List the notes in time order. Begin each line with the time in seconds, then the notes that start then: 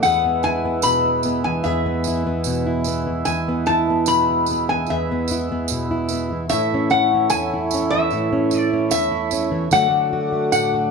0.01 E2 E3 G#3 B3 G#4 E5 F#5, tambourine
0.25 B3
0.43 E4 G#5, tambourine
0.65 B3
0.82 B2 B5, tambourine
1.05 E4
1.23 B3, tambourine
1.44 E3 G#5
1.64 E2 G#4 E5, tambourine
1.86 B3
2.04 E4, tambourine
2.27 B3
2.44 B2, tambourine
2.67 E4
2.84 B3, tambourine
3.07 E3
3.25 E2 G#5, tambourine
3.49 B3
3.66 E4 A5, tambourine
3.90 B3
4.06 B2 B5, tambourine
4.30 E4
4.46 tambourine
4.51 B3
4.69 E3 G#5
4.86 E2 E5, tambourine
4.91 G#4
5.11 B3
5.28 E4, tambourine
5.52 B3
5.68 B2, tambourine
5.91 E4
6.09 tambourine
6.13 B3
6.32 E3
6.49 A2 A3 E4 C#5 E5, tambourine
6.53 A2 E4
6.74 C#4
6.90 E4 F#5, tambourine
7.14 C#4
7.30 E2 G#5, tambourine
7.54 E4
7.71 C#4, tambourine
7.90 E3 E5
8.10 A2 E4, tambourine
8.33 C#4
8.51 E4, tambourine
8.58 D5
8.73 C#4
8.91 E2 E5, tambourine
9.12 E4
9.31 C#4, tambourine
9.52 E3
9.71 D3 F#3 A3 F#4 A4 D5 F#5, tambourine
9.90 A3
10.13 F#4
10.33 A3
10.52 A2 F#5, tambourine
10.74 F#4